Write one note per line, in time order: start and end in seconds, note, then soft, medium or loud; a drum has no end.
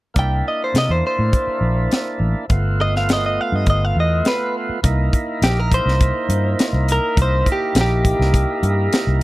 0.14 0.41 C2 medium
0.14 2.45 A#3 medium
0.14 2.46 D4 soft
0.14 2.46 E4 medium
0.14 kick medium
0.14 closed hi-hat soft
0.19 0.46 G5 medium
0.48 0.62 D#5 medium
0.64 0.76 C5 medium
0.74 0.88 C3 medium
0.74 0.91 D#5 medium
0.74 snare medium
0.74 closed hi-hat medium
0.89 1.02 E2 medium
0.89 1.04 C5 medium
1.07 2.19 C5 medium
1.19 1.31 A2 medium
1.33 kick medium
1.33 closed hi-hat medium
1.47 muted fingered electric bass stroke soft
1.61 1.86 A#1 medium
1.92 snare medium
1.92 closed hi-hat soft
2.20 2.33 A1 medium
2.49 3.38 G1 medium
2.49 4.79 A3 medium
2.49 4.80 B3 medium
2.49 4.81 F4 medium
2.49 kick loud
2.49 closed hi-hat medium
2.81 2.95 D#5 medium
2.96 3.09 F5 medium
2.96 snare soft
3.09 snare loud
3.09 closed hi-hat medium
3.13 3.25 D#5 medium
3.26 3.41 D#5 medium
3.41 3.56 F5 medium
3.52 3.64 G2 medium
3.52 3.68 D#5 medium
3.66 3.92 G1 medium
3.66 3.85 D#5 medium
3.66 kick medium
3.66 closed hi-hat soft
3.85 3.97 F5 medium
3.96 4.21 E2 medium
4.00 4.26 D#5 medium
4.25 4.55 B4 medium
4.25 snare medium
4.25 closed hi-hat soft
4.69 muted fingered electric bass stroke soft
4.83 5.08 C2 loud
4.83 9.23 A#3 medium
4.83 9.23 D#4 medium
4.83 9.23 E4 medium
4.83 kick loud
4.83 closed hi-hat medium
5.13 kick medium
5.13 closed hi-hat medium
5.42 5.80 A#1 medium
5.42 5.60 G4 medium
5.42 snare loud
5.42 closed hi-hat medium
5.60 5.72 A#4 medium
5.72 6.86 C5 medium
5.72 kick medium
5.72 closed hi-hat medium
5.86 6.11 C2 medium
5.86 snare soft
6.01 kick medium
6.01 closed hi-hat medium
6.29 6.54 G2 medium
6.29 closed hi-hat medium
6.59 snare medium
6.59 closed hi-hat medium
6.73 6.98 C2 medium
6.89 7.18 A#4 medium
6.89 closed hi-hat medium
7.17 7.42 C2 loud
7.17 kick loud
7.17 closed hi-hat medium
7.22 7.48 C5 medium
7.46 kick medium
7.46 closed hi-hat medium
7.52 7.77 G4 medium
7.75 8.13 A#1 medium
7.75 snare loud
7.75 closed hi-hat medium
7.81 9.23 G4 medium
8.05 kick medium
8.05 closed hi-hat medium
8.19 8.44 C2 medium
8.19 snare soft
8.34 kick loud
8.34 closed hi-hat medium
8.63 8.87 G2 medium
8.63 closed hi-hat medium
8.93 snare medium
8.93 closed hi-hat medium
9.07 9.23 C2 medium